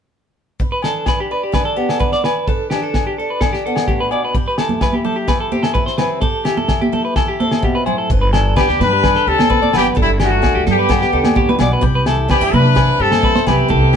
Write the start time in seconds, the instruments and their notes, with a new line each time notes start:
0.60 steel-string acoustic guitar G2 B4, kick
0.72 clean electric guitar B4
0.82 steel-string acoustic guitar D4, clean electric guitar A4, snare, low agogo
1.06 steel-string acoustic guitar G3, clean electric guitar B4, kick, snare, low agogo
1.20 clean electric guitar G4
1.31 clean electric guitar B4, steel-string acoustic guitar D5
1.43 clean electric guitar G4
1.52 steel-string acoustic guitar D3 D4, clean electric guitar B4, kick, snare, low agogo
1.65 clean electric guitar A4
1.76 steel-string acoustic guitar B3, clean electric guitar G4
1.89 clean electric guitar A4, snare, low agogo
2.00 steel-string acoustic guitar G3 D4, clean electric guitar B4, kick
2.12 clean electric guitar D5, snare
2.24 clean electric guitar B4, snare, low agogo
2.48 steel-string acoustic guitar G2 B4, clean electric guitar A4, kick
2.70 steel-string acoustic guitar D4, clean electric guitar G4, snare, low agogo
2.83 clean electric guitar A4
2.94 steel-string acoustic guitar G3, kick, snare, low agogo
3.07 clean electric guitar G4
3.18 clean electric guitar A4, steel-string acoustic guitar D5
3.30 clean electric guitar B4
3.41 steel-string acoustic guitar D3 D4, clean electric guitar A4, kick, snare, low agogo
3.53 clean electric guitar G4, snare
3.66 steel-string acoustic guitar B3, clean electric guitar A4
3.76 snare, low agogo
3.88 steel-string acoustic guitar A2, clean electric guitar G4, kick
4.00 clean electric guitar B4
4.11 steel-string acoustic guitar B2, clean electric guitar D5, low agogo
4.24 clean electric guitar B4
4.35 steel-string acoustic guitar C3 G4, kick
4.48 clean electric guitar B4
4.58 steel-string acoustic guitar E4, clean electric guitar A4, snare, low agogo
4.69 high conga, low conga
4.81 steel-string acoustic guitar G3, clean electric guitar B4, kick, snare, low agogo
4.93 clean electric guitar G4, high conga
5.04 steel-string acoustic guitar G4, clean electric guitar A4, low conga
5.16 clean electric guitar G4
5.28 steel-string acoustic guitar E4, clean electric guitar B4, muted steel-string acoustic guitar stroke, kick, snare, low agogo
5.40 clean electric guitar A4
5.52 steel-string acoustic guitar C4, clean electric guitar G4, high conga
5.63 clean electric guitar A4, snare, low agogo
5.74 steel-string acoustic guitar G3 E4, clean electric guitar B4, kick
5.86 clean electric guitar C5, snare
5.98 steel-string acoustic guitar C4, clean electric guitar B4, snare, low conga, low agogo
6.21 steel-string acoustic guitar C3 G4, clean electric guitar A4, kick
6.45 steel-string acoustic guitar E4, clean electric guitar G4, snare, low agogo
6.57 clean electric guitar A4, high conga
6.68 steel-string acoustic guitar G3, kick, snare, low agogo
6.81 clean electric guitar G4, high conga
6.92 steel-string acoustic guitar G4, clean electric guitar A4, low conga
7.05 clean electric guitar B4
7.16 steel-string acoustic guitar G2 E4, clean electric guitar A4, kick, snare, low agogo
7.28 clean electric guitar G4
7.40 steel-string acoustic guitar C4, clean electric guitar A4, high conga
7.51 snare, low agogo
7.62 steel-string acoustic guitar B2, clean electric guitar G4, kick
7.75 clean electric guitar B4
7.86 steel-string acoustic guitar A2, clean electric guitar C5, low conga, low agogo
7.98 clean electric guitar A4
8.10 upright bass G1, steel-string acoustic guitar B4, muted steel-string acoustic guitar stroke, kick
8.21 clean electric guitar B4
8.33 steel-string acoustic guitar D4, clean electric guitar A4, snare, low agogo
8.56 steel-string acoustic guitar G3 D4, horn section B3 G4, clean electric guitar B4, kick, snare, low agogo
8.69 upright bass D2, clean electric guitar G4, snare
8.80 upright bass G2, horn section D4 B4, clean electric guitar B4, snare, high conga, low conga
8.93 clean electric guitar G4
9.03 steel-string acoustic guitar D3, clean electric guitar B4, kick, snare, low agogo
9.15 clean electric guitar A4, snare
9.27 upright bass D2, horn section C4 A4, steel-string acoustic guitar D4, clean electric guitar G4
9.38 clean electric guitar A4, snare, high conga, low agogo
9.50 steel-string acoustic guitar G3, clean electric guitar B4, kick
9.62 clean electric guitar D5, high conga
9.73 upright bass G1, steel-string acoustic guitar B3, horn section B3 G4, clean electric guitar B4, snare, low conga, low agogo
9.95 upright bass G1, steel-string acoustic guitar G2 D4, clean electric guitar A4, kick
10.00 horn section G3 E4
10.20 horn section A3 F#4, steel-string acoustic guitar D4, clean electric guitar G4, snare, low agogo
10.31 clean electric guitar A4
10.42 steel-string acoustic guitar G3 D4, kick, snare, low agogo
10.55 upright bass D2, clean electric guitar G4
10.66 upright bass G2, horn section B3 G4, clean electric guitar A4, snare, low conga
10.79 clean electric guitar B4
10.89 steel-string acoustic guitar B3, clean electric guitar A4, muted steel-string acoustic guitar stroke, kick, snare, low agogo
11.01 clean electric guitar G4, snare
11.12 upright bass D2, steel-string acoustic guitar D4, clean electric guitar A4
11.24 snare, high conga, low agogo
11.35 steel-string acoustic guitar A2, clean electric guitar G4, kick
11.49 clean electric guitar B4, high conga
11.59 upright bass B1, steel-string acoustic guitar B2, clean electric guitar D5, snare, low conga, low agogo
11.73 clean electric guitar B4
11.81 upright bass C2, steel-string acoustic guitar C3 G4, kick
11.95 clean electric guitar B4
12.06 steel-string acoustic guitar E4, clean electric guitar A4, snare, low agogo
12.28 steel-string acoustic guitar G3 D4, horn section C4 G4, clean electric guitar B4, kick, snare, low agogo
12.41 upright bass G2, steel-string acoustic guitar E4, clean electric guitar G4
12.54 upright bass C3, horn section D4 B4, clean electric guitar B4, high conga, low conga
12.66 muted clean electric guitar stroke
12.75 steel-string acoustic guitar G2 C4, clean electric guitar B4, kick, snare, low agogo
13.00 upright bass G2, horn section C4 A4, steel-string acoustic guitar E4, clean electric guitar G4
13.12 clean electric guitar A4, snare, high conga, low agogo
13.22 steel-string acoustic guitar G3, clean electric guitar B4, kick
13.35 clean electric guitar C5, snare, high conga
13.46 upright bass C2, horn section B3 G4, steel-string acoustic guitar C4, clean electric guitar B4, snare, low conga, low agogo
13.68 upright bass C2, steel-string acoustic guitar C3 E4, clean electric guitar A4, kick
13.93 steel-string acoustic guitar D4, clean electric guitar G4